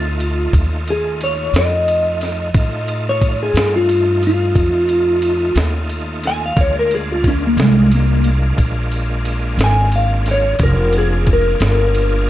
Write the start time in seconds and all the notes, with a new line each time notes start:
Already playing: D2 A3 D#4 F4
0.20 ride
0.53 D#2, kick, ride
0.88 G#4, ride
1.21 C#5, ride
1.53 F2, snare, ride
1.58 D#5
1.88 ride
2.21 snare, ride
2.54 A2 A3 D#4 F4, kick, ride
2.88 ride
3.09 C#5
3.22 kick, ride
3.43 G#4
3.54 G2, snare, ride
3.76 F4
3.89 ride
4.23 ride
4.27 F4
4.55 F2, kick, ride
4.89 ride
5.22 ride
5.56 D#2, snare, ride
5.89 ride
6.24 G#5, snare, ride
6.46 F5
6.56 D2 G#3 A#3 D4 F4, kick, ride
6.61 C#5
6.79 A#4
6.91 G#4, ride
7.12 F4
7.24 C#4, kick, ride
7.47 A#3
7.57 C2, snare, ride
7.62 G#3
7.91 A#3, ride
8.24 ride
8.58 A#1, kick, ride
8.91 ride
9.25 ride
9.57 G#1, snare, ride
9.64 G#5
9.92 F5, ride
10.26 snare, ride
10.31 C#5
10.59 F1 A#3 D4 F4 G#4, kick, ride
10.63 A#4
10.93 ride
10.98 G#4
11.27 kick, ride
11.33 A#4
11.60 G1, snare, ride
11.95 ride